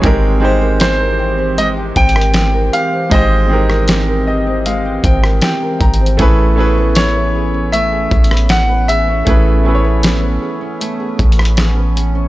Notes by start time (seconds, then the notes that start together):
Already playing: E3 C#4 G#4 B4 C#5
0.02 G#1 G#3 C4 D#4 G4, kick, closed hi-hat
0.06 A#4
0.23 G4
0.40 G#3 C4 D#4 G4
0.45 C5
0.61 A#4
0.80 G4 C5, snare, closed hi-hat
1.00 A#4
1.19 G4
1.38 C4
1.58 G#3 D#5, closed hi-hat
1.77 G4
1.96 G#1 C4 G5, kick, closed hi-hat
2.09 closed hi-hat
2.15 A#4, cross-stick
2.21 closed hi-hat
2.34 G4, snare, closed hi-hat
2.54 A#4
2.73 G4 F5, closed hi-hat
2.92 C4
3.10 G#1 G#3 C4 D#4 G4 D#5, kick, closed hi-hat
3.15 C5
3.31 G4
3.48 G#3 C4 D#4 G4
3.53 A#4
3.70 A#4, cross-stick
3.88 G4, snare, closed hi-hat
4.08 A#4
4.27 G4 D#5
4.47 C4
4.66 G#3 F5, closed hi-hat
4.85 G4
5.04 G#1 C4 G5, kick, closed hi-hat
5.23 A#4, cross-stick
5.41 G4 G5, snare, closed hi-hat
5.62 A#4
5.81 G#1 G4 A#5, kick, closed hi-hat
5.94 closed hi-hat
6.01 C4
6.06 closed hi-hat
6.17 A1 A3 B3 C#4 E4 G#4, kick, closed hi-hat
6.22 B4
6.39 G#4
6.56 A3 C#4 E4 G#4
6.60 B4
6.78 B4
6.95 G#4 C#5, snare, closed hi-hat
7.16 B4
7.35 G#4
7.54 C#4
7.72 A3 E5, closed hi-hat
7.92 G#4
8.11 A1 C#4, kick, closed hi-hat
8.24 closed hi-hat
8.31 B4, cross-stick
8.37 closed hi-hat
8.49 G#4 F#5, snare, closed hi-hat
8.69 B4
8.88 G#4 E5, closed hi-hat
9.08 C#4
9.25 A1 A3 C#4 E4 G#4, kick, closed hi-hat
9.30 B4
9.46 G#4
9.63 A3 C#4 E4 G#4
9.68 B4
9.75 C#5
9.84 B4
10.03 G#4, snare, closed hi-hat
10.23 B4
10.42 G#4
10.61 C#4
10.81 A3, closed hi-hat
11.00 G#4
11.19 A1 C#4, kick, closed hi-hat
11.32 closed hi-hat
11.38 B4, cross-stick
11.45 closed hi-hat
11.57 G#4, snare, closed hi-hat
11.77 B4
11.96 G#4, closed hi-hat
12.15 C#4